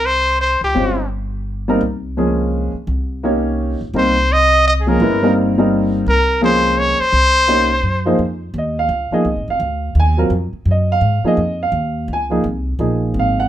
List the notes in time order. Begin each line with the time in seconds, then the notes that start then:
Already playing: C2
0.06 C5
0.41 C5
0.61 C#2 G4
0.74 G1 G#3 C4 C#4 F4 C5
1.68 G3 A#3 C4 D#4 A#4
1.81 C2
2.17 F3 G#3 A#3 C#4 G#4
2.74 muted upright bass stroke
2.87 C2
3.23 A#3 C#4 D#4 G4 C#5
3.81 C#2
3.94 C2 G3 A#3 C4 D#4 A#4 C5
4.32 D#5
4.67 D#5
4.80 G#4
4.87 F3 G#3 A#3 C#4 G#4 A#4
5.00 G1 G#3 B3 C#4 E4 B4
5.22 G3 A#3 C4 D#4 A#4
5.58 G3 A#3 C4 D#4 A#4
6.06 C2 A#4
6.41 F3 G#3 A#3 C#4 G#4 C5
6.78 C#5
7.00 C5, muted upright bass stroke
7.12 C2
7.47 A#3 C#4 D#4 G4 C#5
7.83 F#2
8.05 F3 A#3 D#4 G#4 C5
8.19 F2
8.54 D#2
8.58 D#5
8.79 F5
8.89 C#2
9.11 F3 A#3 D#4 G#4 D#5, muted upright bass stroke
9.25 C2
9.36 G#1
9.48 F1 F5
9.60 D2
9.95 D#2
10.00 G#5
10.17 F#3 C4 F4 A#4
10.30 F2
10.53 muted upright bass stroke
10.65 F#2
10.71 D#5
10.92 F5
11.01 G#2
11.24 F3 A#3 D#4 G#4 D#5, muted upright bass stroke
11.37 F2
11.63 F5
11.72 D#2
12.08 C#2
12.13 G#5
12.30 F3 A#3 D#4 G#4
12.44 C2
12.79 A#1 F3 A#3 D#4 G#4
13.14 G#1
13.19 F5
13.40 F#5